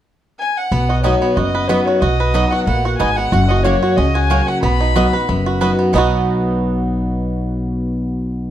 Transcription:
0.39 0.59 G#5 loud
0.57 0.91 F#5 medium
0.71 1.13 B1 medium
0.71 1.34 B2 medium
0.71 1.21 B3 medium
0.89 1.37 F#4 medium
0.89 1.03 D#5 medium
1.03 1.35 F#3 medium
1.03 1.14 B3 medium
1.03 1.36 B3 medium
1.03 1.51 D#4 medium
1.03 1.36 D#4 loud
1.03 1.14 F#4 medium
1.03 1.36 F#4 loud
1.03 1.37 C#5 medium
1.03 1.14 D#5 medium
1.03 1.14 B5 medium
1.22 1.66 B3 medium
1.35 1.78 F#1 medium
1.35 1.99 F#2 medium
1.35 1.87 F#4 medium
1.35 1.69 D#5 medium
1.55 1.99 B4 medium
1.68 2.00 F#3 medium
1.68 1.79 B3 medium
1.68 2.16 B3 medium
1.68 2.01 B3 medium
1.68 2.01 D#4 loud
1.68 1.79 F#4 medium
1.68 2.01 F#4 medium
1.68 1.87 B4 medium
1.68 1.80 D#5 medium
1.68 1.79 B5 loud
1.85 2.01 F#4 medium
1.85 2.02 C#5 medium
2.01 2.43 B1 medium
2.01 2.64 B2 medium
2.01 2.52 F#4 medium
2.01 2.52 D#5 medium
2.20 2.64 B4 medium
2.34 2.65 F#3 loud
2.34 2.44 B3 medium
2.34 2.66 B3 medium
2.34 2.81 D#4 medium
2.34 2.66 D#4 loud
2.34 2.44 F#4 medium
2.34 2.66 F#4 loud
2.34 2.45 D#5 medium
2.34 2.45 B5 loud
2.51 2.85 F#4 medium
2.51 2.65 F#5 medium
2.65 2.95 A#1 medium
2.65 2.98 A#3 medium
2.65 3.14 B3 medium
2.65 2.96 F#5 medium
2.85 3.32 F#4 medium
2.98 3.27 G#1 medium
2.98 3.31 G#2 medium
2.98 3.10 B3 medium
2.98 3.32 D#4 medium
2.98 3.10 F#4 medium
2.98 3.10 D#5 loud
2.98 3.18 G#5 loud
2.98 3.10 B5 medium
3.16 3.33 B3 medium
3.16 3.50 F#5 loud
3.32 3.73 F#1 medium
3.32 3.95 F#2 loud
3.32 3.50 F#4 medium
3.49 3.65 F#4 medium
3.49 3.65 D#5 medium
3.63 3.96 F#3 medium
3.63 3.96 A#3 medium
3.63 3.75 A#3 medium
3.63 3.97 C#4 loud
3.63 3.83 F#4 medium
3.63 3.75 F#4 medium
3.63 3.97 F#4 loud
3.63 3.98 C#5 loud
3.63 3.75 C#5 medium
3.63 3.75 F#5 loud
3.83 4.15 F#4 medium
3.97 4.39 C#2 medium
3.97 4.60 C#3 medium
3.97 4.45 C#4 medium
3.97 4.16 D#5 loud
4.15 4.31 F#4 medium
4.15 4.48 G#5 loud
4.30 4.61 F#3 medium
4.30 4.40 A#3 medium
4.30 4.62 A#3 medium
4.30 4.62 C#4 loud
4.30 4.40 F#4 medium
4.30 4.80 F#4 medium
4.30 4.62 F#4 loud
4.30 4.41 C#5 loud
4.30 4.41 F#5 loud
4.47 4.62 C#4 medium
4.47 4.62 F#5 loud
4.62 5.04 B1 medium
4.62 5.26 B2 loud
4.62 5.10 B3 medium
4.62 5.57 B5 loud
4.81 5.25 D#4 medium
4.96 5.13 F#3 medium
4.96 5.06 B3 medium
4.96 5.13 B3 loud
4.96 5.14 D#4 medium
4.96 5.43 F#4 medium
4.96 5.06 F#4 loud
4.96 5.13 F#4 loud
4.96 5.06 D#5 medium
4.96 5.06 B5 medium
5.13 5.29 D#4 soft
5.13 5.28 F#4 medium
5.13 5.58 B4 medium
5.29 5.70 F#1 medium
5.29 5.91 F#2 medium
5.29 5.76 B3 medium
5.46 5.91 F#4 medium
5.61 5.92 F#3 medium
5.61 5.71 B3 medium
5.61 5.93 B3 medium
5.61 5.93 D#4 medium
5.61 5.71 F#4 medium
5.61 5.93 F#4 loud
5.61 5.94 B4 medium
5.61 5.71 D#5 medium
5.61 5.71 B5 loud
5.79 5.92 B3 medium
5.93 8.51 B1 medium
5.93 8.51 B2 medium
5.93 8.51 F#3 loud
5.93 8.51 B3 medium
5.93 8.51 D#4 loud
5.93 8.51 D#4 medium
5.93 8.51 F#4 medium
5.93 8.51 D#5 medium
5.93 8.51 B5 medium
5.98 8.51 F#4 medium

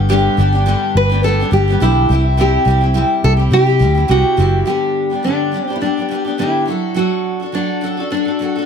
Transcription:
0.00 0.27 G1 loud
0.09 0.38 G2 medium
0.09 0.38 D3 medium
0.09 0.36 G3 medium
0.09 0.37 B3 medium
0.09 0.38 D4 medium
0.09 0.39 G4 medium
0.37 0.74 G1 medium
0.37 0.53 G3 medium
0.37 0.53 B3 medium
0.37 0.52 D4 medium
0.37 0.51 G4 medium
0.53 0.65 G3 soft
0.53 0.66 B3 soft
0.53 0.66 D4 soft
0.53 0.66 G4 medium
0.66 1.10 G2 medium
0.66 1.11 D3 medium
0.66 1.11 G3 medium
0.66 1.10 B3 medium
0.66 1.10 D4 medium
0.66 1.08 G4 medium
0.95 1.42 G1 loud
0.95 1.24 B4 loud
1.09 1.22 G3 soft
1.09 1.23 B3 medium
1.09 1.24 D4 medium
1.09 1.23 G4 medium
1.23 1.39 G3 medium
1.23 1.40 B3 medium
1.23 1.40 D4 medium
1.23 1.39 G4 medium
1.23 1.53 A4 loud
1.40 1.50 G3 soft
1.40 1.51 B3 soft
1.40 1.52 D4 medium
1.40 1.52 G4 medium
1.51 1.75 G1 medium
1.51 1.67 G3 medium
1.51 1.68 B3 medium
1.51 1.68 D4 medium
1.51 1.67 G4 medium
1.68 1.80 G3 soft
1.68 1.81 B3 medium
1.68 1.81 D4 soft
1.68 1.81 G4 medium
1.80 2.05 B1 medium
1.80 2.09 G2 medium
1.80 2.10 D3 medium
1.80 2.08 G3 medium
1.80 2.10 B3 medium
1.80 2.10 D4 medium
1.80 2.23 E4 medium
1.80 2.11 G4 medium
2.09 2.56 C2 loud
2.09 2.37 G3 medium
2.09 2.37 C4 medium
2.09 2.37 E4 medium
2.09 2.38 G4 medium
2.37 2.66 C3 medium
2.37 2.64 G3 medium
2.37 2.65 C4 medium
2.37 2.66 E4 medium
2.37 2.67 G4 medium
2.65 3.02 C2 medium
2.65 2.82 G3 medium
2.65 2.82 C4 medium
2.65 2.81 E4 medium
2.65 2.80 G4 medium
2.81 2.94 C4 soft
2.81 2.94 E4 soft
2.81 2.94 G4 medium
2.94 3.39 C3 medium
2.94 3.39 G3 medium
2.94 3.38 C4 medium
2.94 3.37 E4 medium
2.94 3.36 G4 medium
3.24 3.48 C2 loud
3.24 3.32 A4 loud
3.37 3.50 C4 soft
3.37 3.51 E4 soft
3.37 3.51 G4 medium
3.51 3.82 C3 loud
3.51 3.67 G3 medium
3.51 3.68 C4 medium
3.51 3.67 E4 medium
3.51 3.65 G4 medium
3.67 3.79 C4 soft
3.67 3.80 E4 soft
3.67 3.80 G4 medium
3.79 4.04 D2 loud
3.79 3.96 G3 medium
3.79 3.96 C4 medium
3.79 3.95 E4 medium
3.79 3.94 G4 medium
3.95 4.08 C4 soft
3.95 4.08 E4 soft
3.95 4.09 G4 medium
4.08 4.22 C2 loud
4.08 4.38 C3 medium
4.08 4.36 G3 medium
4.08 4.36 C4 medium
4.08 4.38 E4 medium
4.08 4.11 F#4 loud
4.08 4.70 F#4 medium
4.08 4.38 G4 medium
4.37 4.62 F#1 loud
4.37 4.65 G3 medium
4.37 4.67 C4 medium
4.37 4.67 E4 medium
4.37 4.66 G4 medium
4.65 5.11 G2 medium
4.65 5.11 D3 medium
4.65 5.11 G3 medium
4.65 5.11 B3 medium
4.65 5.10 D4 medium
4.65 5.09 G4 medium
5.10 5.23 G3 soft
5.10 5.23 B3 soft
5.10 5.24 D4 soft
5.10 5.24 G4 soft
5.23 5.52 G2 medium
5.23 5.53 D3 medium
5.23 5.50 G3 medium
5.23 5.52 B3 medium
5.23 5.53 D4 medium
5.23 5.54 G4 medium
5.52 5.68 G3 soft
5.52 5.69 B3 medium
5.52 5.68 D4 medium
5.52 5.66 G4 soft
5.65 5.77 C4 medium
5.65 5.82 D4 soft
5.65 5.81 G4 soft
5.70 5.80 G3 soft
5.70 5.81 B3 soft
5.76 5.82 E4 medium
5.81 5.97 G3 medium
5.81 5.98 B3 medium
5.81 5.97 D4 medium
5.81 5.96 G4 medium
5.97 6.07 G3 soft
5.97 6.09 B3 soft
5.97 6.10 D4 soft
5.97 6.11 G4 soft
6.09 6.25 G3 medium
6.09 6.25 B3 medium
6.09 6.25 D4 medium
6.09 6.23 G4 medium
6.25 6.38 G3 soft
6.25 6.38 B3 soft
6.25 6.38 D4 soft
6.25 6.39 G4 medium
6.38 6.67 G2 medium
6.38 6.68 D3 medium
6.38 6.65 G3 medium
6.38 6.67 B3 medium
6.38 6.66 D4 medium
6.38 6.99 E4 medium
6.38 6.68 G4 medium
6.66 6.93 F#3 medium
6.66 6.94 D4 soft
6.66 6.95 F#4 medium
6.66 6.95 A4 medium
6.94 7.40 F#3 medium
6.94 7.41 D4 medium
6.94 7.40 F#4 medium
6.94 7.38 A4 medium
7.40 7.52 D4 soft
7.40 7.53 F#4 soft
7.40 7.53 A4 soft
7.52 7.80 F#3 medium
7.52 7.81 D4 medium
7.52 7.82 F#4 medium
7.52 7.83 A4 medium
7.81 7.98 F#3 medium
7.81 7.98 D4 medium
7.81 7.97 F#4 medium
7.81 7.96 A4 medium
7.97 8.10 D4 soft
7.97 8.11 F#4 soft
7.97 8.11 A4 medium
8.10 8.27 F#3 medium
8.10 8.27 D4 medium
8.10 8.26 F#4 medium
8.10 8.24 A4 medium
8.25 8.39 D4 soft
8.25 8.39 F#4 soft
8.25 8.39 A4 soft
8.39 8.55 F#3 medium
8.39 8.56 D4 medium
8.39 8.56 F#4 medium
8.39 8.54 A4 medium
8.56 8.66 D4 soft
8.56 8.66 F#4 soft
8.56 8.66 A4 medium

